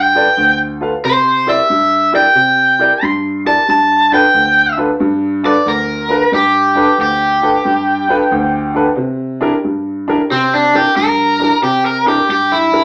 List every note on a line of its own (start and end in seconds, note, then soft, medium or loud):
0.00 0.25 G2 medium
0.00 0.58 G5 medium
0.15 0.26 F4 medium
0.15 0.26 A4 medium
0.15 0.27 B4 medium
0.15 0.27 D5 medium
0.37 0.91 D2 medium
0.81 0.92 F4 medium
0.81 0.92 A4 medium
0.81 0.93 B4 medium
0.81 0.93 F5 medium
1.04 1.57 C3 medium
1.04 1.47 C5 medium
1.46 1.58 E4 medium
1.46 1.58 G4 medium
1.46 1.59 A#4 medium
1.46 1.59 D5 medium
1.46 2.13 E5 medium
1.70 2.23 G2 medium
2.13 2.24 E4 medium
2.13 2.24 G4 medium
2.13 2.25 A#4 medium
2.13 2.25 D5 medium
2.13 3.04 G5 medium
2.35 2.89 C3 medium
2.79 2.91 E4 medium
2.79 2.91 G4 medium
2.79 2.91 A#4 medium
2.79 2.91 D5 medium
3.02 3.56 G2 medium
3.02 3.46 C6 medium
3.45 3.57 E4 medium
3.45 3.57 G4 medium
3.45 3.57 A#4 medium
3.45 3.58 D5 medium
3.45 3.68 A5 medium
3.68 4.22 G2 medium
3.68 4.12 A5 medium
4.12 4.23 D4 medium
4.12 4.24 F4 medium
4.12 4.24 A4 medium
4.12 4.24 B4 medium
4.12 4.78 G5 medium
4.34 4.88 D2 medium
4.77 4.89 D4 medium
4.77 4.89 F4 medium
4.77 4.90 A4 medium
4.77 4.90 B4 medium
5.00 5.54 G2 medium
5.43 5.55 D4 medium
5.43 5.55 F4 medium
5.43 5.56 A4 medium
5.43 5.56 B4 medium
5.43 5.67 D5 medium
5.66 6.20 D2 medium
5.66 6.32 A#4 medium
6.09 6.21 D4 medium
6.09 6.21 F4 medium
6.09 6.21 A4 medium
6.09 6.22 B4 medium
6.32 6.86 G2 medium
6.32 6.98 G4 medium
6.75 6.87 D4 medium
6.75 6.87 F4 medium
6.75 6.88 A4 medium
6.75 6.88 B4 medium
6.98 7.52 D2 medium
6.98 8.95 G4 medium
7.42 7.54 D4 medium
7.42 7.54 F4 medium
7.42 7.54 A4 medium
7.42 7.55 B4 medium
7.65 8.19 G2 medium
8.09 8.20 D4 medium
8.09 8.20 F4 medium
8.09 8.21 A4 medium
8.09 8.21 B4 medium
8.31 8.85 D2 medium
8.74 8.86 D4 medium
8.74 8.86 F4 medium
8.74 8.87 A4 medium
8.74 8.87 B4 medium
8.97 9.51 C3 medium
9.41 9.52 D4 medium
9.41 9.53 E4 medium
9.41 9.53 G4 medium
9.41 9.53 A#4 medium
9.64 10.17 G2 medium
10.08 10.19 D4 medium
10.08 10.19 E4 medium
10.08 10.19 G4 medium
10.08 10.20 A#4 medium
10.30 10.84 C3 medium
10.30 10.52 C4 medium
10.54 10.74 D4 medium
10.73 10.85 D4 medium
10.73 10.85 E4 medium
10.73 10.85 G4 medium
10.73 10.96 G4 medium
10.73 10.86 A#4 medium
10.96 11.49 G2 medium
10.96 11.61 A#4 medium
11.40 11.51 D4 medium
11.40 11.51 E4 medium
11.40 11.52 G4 medium
11.40 11.52 A#4 medium
11.63 12.16 C3 medium
11.63 11.84 G4 medium
11.86 12.07 A#4 medium
12.06 12.17 D4 medium
12.06 12.18 E4 medium
12.06 12.18 G4 medium
12.06 12.29 G4 medium
12.06 12.18 A#4 medium
12.29 12.82 G2 medium
12.29 12.51 G4 medium
12.52 12.84 E4 medium
12.72 12.83 D4 medium
12.72 12.84 E4 medium
12.72 12.84 G4 medium
12.72 12.84 A#4 medium